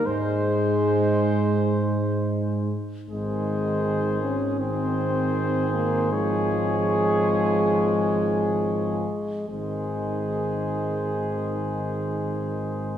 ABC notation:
X:1
M:4/4
L:1/8
Q:1/4=77
K:Ab
V:1 name="Trumpet"
c6- c z | c4 c4 | d6- d z | c8 |]
V:2 name="Flugelhorn"
c6- c z | A4 A4 | A6- A z | A8 |]
V:3 name="French horn" clef=bass
A,6- A, z | A,3 D C3 B, | A,8 | A,8 |]
V:4 name="Euphonium" clef=bass
A,6- A, z | E,4 E,4 | F,6- F, z | E,8 |]
V:5 name="Tuba" clef=bass
A,,6- A,, z | A,,,8- | A,,,6- A,,, z | A,,,8 |]